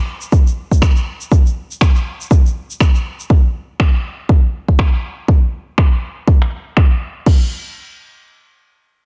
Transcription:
0.21 shaker medium
0.32 kick loud
0.32 shaker medium
0.47 shaker soft
0.71 kick medium
0.71 shaker medium
0.82 finger snap loud
0.82 kick loud
0.82 shaker medium
0.96 shaker soft
1.21 shaker medium
1.32 kick loud
1.32 shaker medium
1.46 shaker soft
1.71 shaker medium
1.81 finger snap loud
1.81 kick loud
1.81 shaker medium
1.95 shaker soft
2.21 shaker medium
2.31 kick loud
2.31 shaker medium
2.46 shaker soft
2.71 shaker medium
2.80 finger snap loud
2.80 kick loud
2.80 shaker medium
2.95 shaker soft
3.20 shaker medium
3.30 kick loud
3.80 finger snap medium
3.80 kick loud
4.29 kick loud
4.68 kick medium
4.79 finger snap loud
4.79 kick loud
5.28 kick loud
5.78 finger snap medium
5.78 kick loud
6.28 kick loud
6.42 finger snap medium
6.77 finger snap loud
6.77 kick loud
7.26 kick loud
7.26 crash medium

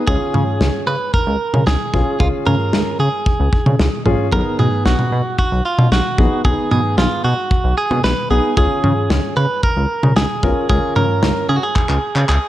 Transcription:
0.07 0.17 C#2 loud
0.07 0.88 C#4 medium
0.07 0.88 F4 medium
0.07 0.87 G#4 loud
0.07 0.88 G#4 medium
0.07 kick loud
0.34 0.44 C#3 loud
0.34 mid tom medium
0.61 0.70 C#2 loud
0.61 snare loud
0.87 0.97 C#3 loud
0.87 1.13 B4 medium
1.14 1.66 A#4 loud
1.14 kick medium
1.27 1.37 C#2 loud
1.54 1.63 C#3 medium
1.54 mid tom medium
1.67 1.76 C#2 loud
1.67 2.22 G#4 medium
1.67 snare loud
1.94 2.03 B1 medium
1.94 2.14 C#4 medium
1.94 2.14 F4 medium
1.94 2.14 G#4 medium
1.94 kick medium
2.20 2.30 C#2 loud
2.20 3.01 C#4 medium
2.20 2.27 F4 medium
2.20 3.01 F4 medium
2.20 3.01 G#4 medium
2.20 kick loud
2.46 2.56 C#3 loud
2.46 2.99 A#4 medium
2.46 mid tom medium
2.73 2.83 C#2 loud
2.73 snare loud
3.00 3.09 C#3 loud
3.00 4.02 G#4 medium
3.26 kick medium
3.40 3.49 C#2 loud
3.53 kick medium
3.66 3.76 C#3 loud
3.66 mid tom medium
3.79 3.89 C#2 loud
3.79 snare loud
4.06 4.15 A#1 medium
4.06 4.26 C#4 medium
4.06 4.26 F4 medium
4.06 4.26 G#4 loud
4.06 mid tom medium
4.32 4.42 B1 loud
4.32 5.13 B3 medium
4.32 5.13 D#4 medium
4.32 5.13 G#4 medium
4.32 4.59 A#4 medium
4.32 kick loud
4.59 4.69 B2 loud
4.59 4.85 G#4 medium
4.59 mid tom medium
4.86 4.95 B1 medium
4.86 5.38 F#4 medium
4.86 snare loud
4.99 mid tom medium
5.12 5.22 B2 loud
5.39 5.65 F#4 medium
5.39 kick medium
5.52 5.61 B1 loud
5.65 5.92 F4 medium
5.78 5.88 B2 loud
5.78 mid tom medium
5.92 6.01 B1 loud
5.92 6.41 F#4 medium
5.92 snare loud
6.18 6.28 A#1 medium
6.18 6.38 B3 medium
6.18 6.38 D#4 medium
6.18 6.38 G#4 medium
6.18 kick loud
6.45 6.54 B1 loud
6.45 7.25 B3 medium
6.45 7.25 D#4 medium
6.45 7.25 G#4 medium
6.45 6.70 G#4 loud
6.45 kick loud
6.71 6.81 B2 loud
6.71 6.98 G#4 medium
6.71 mid tom medium
6.98 7.07 B1 loud
6.98 7.24 F4 medium
6.98 snare loud
7.24 7.34 B2 loud
7.24 7.77 F#4 medium
7.51 kick loud
7.64 7.74 B1 medium
7.78 8.04 G#4 loud
7.91 8.00 B2 loud
7.91 mid tom medium
8.04 8.14 B1 loud
8.04 8.30 B4 loud
8.04 snare loud
8.30 8.40 B1 medium
8.30 8.51 B3 medium
8.30 8.51 D#4 medium
8.30 8.51 G#4 medium
8.30 8.56 G#4 medium
8.57 8.67 C#2 loud
8.57 9.38 C#4 medium
8.57 9.38 F4 medium
8.57 9.38 G#4 medium
8.57 9.36 G#4 loud
8.57 kick loud
8.84 8.93 C#3 loud
8.84 mid tom medium
9.10 9.20 C#2 loud
9.10 snare loud
9.37 9.46 C#3 loud
9.37 9.63 B4 loud
9.63 10.16 A#4 loud
9.63 kick medium
9.77 9.86 C#2 medium
10.03 10.13 C#3 medium
10.03 mid tom medium
10.16 10.26 C#2 loud
10.16 10.68 G#4 medium
10.16 snare loud
10.43 10.53 B1 medium
10.43 10.63 C#4 medium
10.43 10.63 F4 medium
10.43 10.63 A#4 medium
10.43 kick medium
10.69 10.79 C#2 loud
10.69 11.50 C#4 medium
10.69 11.50 F4 medium
10.69 10.94 G#4 medium
10.69 11.50 A#4 medium
10.69 kick loud
10.96 11.06 C#3 loud
10.96 11.49 A#4 loud
10.96 mid tom medium
11.23 11.32 C#2 loud
11.23 snare loud
11.49 11.59 C#3 loud
11.49 11.56 G#4 medium
11.56 11.63 F#4 medium
11.63 12.28 G#4 medium
11.76 kick medium
11.76 clap medium
11.89 11.99 C#2 loud
11.89 clap medium
12.15 12.25 C#3 loud
12.15 clap medium
12.29 12.38 C#2 loud
12.29 12.48 G#4 medium
12.29 clap medium

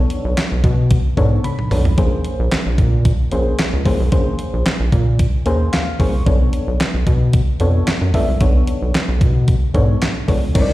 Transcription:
0.00 0.38 B3 medium
0.00 0.38 D4 medium
0.00 0.39 A4 medium
0.00 0.39 C#5 medium
0.10 closed hi-hat medium
0.25 0.35 B1 loud
0.37 snare loud
0.37 clap medium
0.37 closed hi-hat medium
0.52 0.62 B1 medium
0.64 0.98 B2 loud
0.64 kick loud
0.64 closed hi-hat medium
0.91 kick loud
0.91 closed hi-hat loud
1.17 1.40 G#2 loud
1.17 1.45 B3 medium
1.17 1.45 D4 medium
1.17 1.45 A4 medium
1.17 1.45 C#5 medium
1.17 kick medium
1.17 closed hi-hat medium
1.44 1.94 B5 medium
1.44 closed hi-hat medium
1.44 high tom soft
1.59 mid tom medium
1.71 1.94 B1 medium
1.71 1.85 B3 medium
1.71 1.86 D4 medium
1.71 1.86 A4 medium
1.71 1.86 C#5 medium
1.71 mid tom medium
1.71 open hi-hat medium
1.85 floor tom medium
1.98 2.20 A#1 loud
1.98 2.53 A#3 medium
1.98 2.53 C#4 medium
1.98 2.53 G#4 medium
1.98 2.53 C5 medium
1.98 kick loud
1.98 closed hi-hat medium
2.24 closed hi-hat medium
2.39 2.50 A#1 loud
2.52 snare loud
2.52 clap medium
2.52 closed hi-hat loud
2.66 2.80 A#1 loud
2.78 3.13 A#2 loud
2.78 kick medium
2.78 closed hi-hat medium
3.05 kick loud
3.05 closed hi-hat loud
3.31 3.55 A#1 loud
3.31 3.59 A#3 medium
3.31 3.59 C#4 medium
3.31 3.59 G#4 medium
3.31 3.60 C5 medium
3.31 closed hi-hat medium
3.59 snare loud
3.59 clap medium
3.59 closed hi-hat medium
3.73 3.84 C#2 medium
3.85 3.97 C2 medium
3.85 4.00 A#3 medium
3.85 4.00 C#4 medium
3.85 4.00 G#4 medium
3.85 4.00 C5 medium
3.85 kick medium
3.85 open hi-hat medium
4.00 4.10 B1 loud
4.12 4.35 A#1 medium
4.12 4.67 A#3 medium
4.12 4.67 C#4 medium
4.12 4.67 G#4 medium
4.12 4.67 C5 medium
4.12 kick loud
4.12 closed hi-hat medium
4.39 closed hi-hat medium
4.53 4.64 A#1 loud
4.66 snare loud
4.66 clap loud
4.66 closed hi-hat loud
4.80 4.90 A#1 medium
4.92 5.27 A#2 loud
4.92 kick medium
4.92 closed hi-hat medium
5.19 kick loud
5.19 closed hi-hat loud
5.46 5.69 D#2 medium
5.46 5.73 A#3 medium
5.46 5.74 C#4 medium
5.46 5.74 G#4 medium
5.46 5.74 C5 loud
5.46 closed hi-hat medium
5.73 5.98 F5 medium
5.73 snare loud
5.73 clap medium
5.73 closed hi-hat medium
5.99 6.22 C2 medium
5.99 6.14 A#3 medium
5.99 6.14 C#4 medium
5.99 6.14 G#4 medium
5.99 6.14 C5 medium
5.99 6.25 C#6 medium
5.99 kick medium
5.99 open hi-hat medium
6.26 6.49 B1 loud
6.26 6.81 B3 medium
6.26 6.81 D4 medium
6.26 6.81 A4 medium
6.26 6.82 C#5 medium
6.26 kick loud
6.26 closed hi-hat medium
6.53 closed hi-hat medium
6.67 6.78 B1 loud
6.80 snare loud
6.80 clap medium
6.80 closed hi-hat loud
6.94 7.05 B1 medium
7.07 7.41 B2 loud
7.07 kick loud
7.07 closed hi-hat medium
7.33 kick loud
7.33 closed hi-hat loud
7.60 7.83 F2 loud
7.60 7.88 B3 medium
7.60 7.88 D4 medium
7.60 7.88 A4 medium
7.60 7.88 C#5 medium
7.60 closed hi-hat medium
7.87 snare loud
7.87 clap medium
7.87 closed hi-hat loud
8.01 8.12 F#2 medium
8.14 8.26 C#2 medium
8.14 8.28 B3 medium
8.14 8.29 D4 medium
8.14 8.29 A4 medium
8.14 8.29 E5 medium
8.14 kick medium
8.14 open hi-hat medium
8.28 8.39 C2 medium
8.41 8.63 B1 loud
8.41 8.96 B3 medium
8.41 8.96 D4 medium
8.41 8.96 A4 medium
8.41 8.96 C#5 medium
8.41 kick loud
8.41 closed hi-hat medium
8.67 closed hi-hat medium
8.82 8.92 B1 medium
8.94 snare loud
8.94 clap medium
8.94 closed hi-hat loud
9.08 9.23 B1 loud
9.21 9.55 B2 loud
9.21 kick medium
9.21 closed hi-hat medium
9.48 kick loud
9.48 closed hi-hat medium
9.74 9.97 G#2 medium
9.74 10.02 B3 medium
9.74 10.02 D4 medium
9.74 10.02 A4 medium
9.74 10.02 C#5 medium
9.74 kick medium
9.74 closed hi-hat medium
10.02 snare loud
10.02 clap medium
10.02 closed hi-hat medium
10.28 10.51 C#2 medium
10.28 10.43 B3 medium
10.28 10.43 D4 medium
10.28 10.43 A4 medium
10.28 10.43 C#5 medium
10.28 kick medium
10.28 open hi-hat medium
10.55 10.73 C2 loud
10.55 10.73 C4 medium
10.55 10.73 D#4 medium
10.55 10.73 A#4 medium
10.55 10.62 C#5 medium
10.55 kick loud
10.55 closed hi-hat medium
10.55 crash medium
10.62 10.73 D5 medium

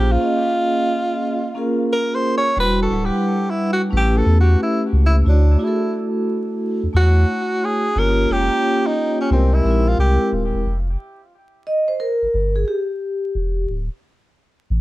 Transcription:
0.00 0.17 A#1 loud
0.00 0.17 A#3 medium
0.00 0.17 C#4 medium
0.00 0.17 F4 medium
0.00 0.14 G4 medium
0.00 0.18 G#4 medium
0.00 0.18 C5 medium
0.12 1.79 F4 loud
0.20 1.40 A#3 medium
0.20 1.40 C#4 medium
0.20 1.41 F4 medium
0.20 1.41 G#4 medium
0.20 1.42 D#5 medium
1.54 2.46 A#3 medium
1.54 2.46 C#4 medium
1.54 2.47 F4 medium
1.54 2.47 G#4 medium
1.54 2.48 A#4 medium
1.93 2.17 A#4 loud
2.15 2.36 C5 loud
2.38 2.57 C#5 loud
2.56 2.87 E1 loud
2.56 2.87 G3 medium
2.56 2.87 D4 medium
2.56 2.87 E4 medium
2.56 2.88 F#4 medium
2.56 2.88 B4 medium
2.60 2.79 B4 loud
2.82 3.06 A4 medium
2.89 3.10 D1 medium
2.89 3.91 G3 medium
2.89 3.91 D4 medium
2.89 3.90 E4 medium
2.89 3.92 B4 medium
2.89 3.92 F#5 medium
3.05 3.52 G4 medium
3.50 3.71 E4 medium
3.73 3.82 F#4 medium
3.90 4.22 A1 loud
3.90 4.21 A3 medium
3.90 4.21 C#4 medium
3.90 4.22 E4 medium
3.90 4.22 G4 medium
3.90 4.23 B4 medium
3.97 4.19 G4 loud
4.17 4.38 A4 loud
4.23 4.56 E2 medium
4.23 5.15 A3 medium
4.23 4.33 B3 soft
4.23 5.16 E4 medium
4.23 5.16 G4 medium
4.23 5.17 B4 medium
4.31 5.19 C#4 medium
4.41 4.60 F#4 medium
4.63 4.82 E4 medium
4.93 5.23 C#2 loud
5.06 5.16 E4 medium
5.24 5.56 D2 loud
5.24 5.56 A3 medium
5.24 5.56 D4 medium
5.24 5.56 E4 medium
5.24 5.57 F#4 medium
5.24 5.57 C#5 medium
5.29 5.66 D4 medium
5.58 6.79 A3 medium
5.58 6.79 D4 medium
5.58 6.80 E4 medium
5.58 6.80 F#4 medium
5.58 5.69 G#4 medium
5.64 5.96 E4 medium
5.64 6.84 A4 medium
6.83 6.88 E2 soft
6.93 7.25 E2 medium
6.93 7.85 A3 medium
6.93 7.85 D4 medium
6.93 7.86 E4 medium
6.93 7.86 F#4 medium
6.93 7.66 F#4 loud
6.93 7.87 C#5 medium
7.65 8.00 G#4 loud
7.94 8.26 G1 loud
7.94 8.25 A#3 medium
7.94 8.26 C#4 medium
7.94 8.26 F4 medium
7.94 8.27 G4 medium
7.94 8.27 C#5 medium
7.99 8.34 A#4 loud
8.28 8.49 F1 medium
8.28 8.37 G#3 medium
8.28 9.31 C#4 medium
8.28 9.31 F4 medium
8.28 9.31 G4 medium
8.28 8.89 G4 loud
8.28 9.32 C#5 medium
8.35 9.33 A#3 medium
8.87 9.20 D#4 loud
9.21 9.31 C#4 medium
9.30 9.61 C2 loud
9.30 9.61 G#3 medium
9.30 9.61 C4 medium
9.30 9.56 C4 medium
9.30 9.62 E4 medium
9.30 9.62 G4 medium
9.30 9.62 A#4 medium
9.54 9.90 E4 medium
9.63 9.95 A#1 medium
9.63 10.55 G#3 medium
9.63 10.55 C4 medium
9.63 9.73 D#4 soft
9.63 10.56 G4 medium
9.63 10.56 A#4 medium
9.71 10.59 E4 medium
9.88 9.99 F4 medium
9.98 10.18 C2 medium
9.98 10.31 G4 medium
10.32 10.52 D#1 loud
10.54 10.65 E1 medium
10.66 10.96 F1 loud
11.67 11.89 D#5 medium
11.88 11.99 C5 medium
12.00 12.52 A#4 medium
12.22 12.27 G1 soft
12.34 12.64 G1 medium
12.56 12.68 G#4 medium
12.68 13.65 G4 medium
13.35 13.65 E1 loud
13.69 13.88 D1 medium
14.70 14.81 A1 loud

